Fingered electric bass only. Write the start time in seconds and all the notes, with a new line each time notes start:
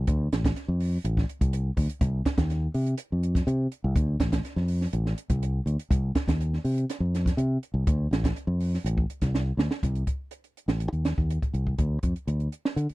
0.08 D2
0.32 A1
0.68 F2
1.04 A1
1.41 C2
1.77 D2
2.01 C2
2.38 D#2
2.74 C3
3.12 F2
3.47 C3
3.84 C2
3.96 D2
4.20 A1
4.56 F2
4.93 A1
5.30 C2
5.66 D2
5.90 C2
6.28 D#2
6.64 C3
7.00 F2
7.37 C3
7.74 C2
7.87 D2
8.11 A1
8.47 F2
8.84 A1
9.22 C2
9.57 D2
9.83 C2
10.68 A1
10.92 D#2
11.18 D#2
11.54 C2
11.78 D2
12.03 F2
12.27 D2
12.76 D3
12.90 muted fingered electric bass stroke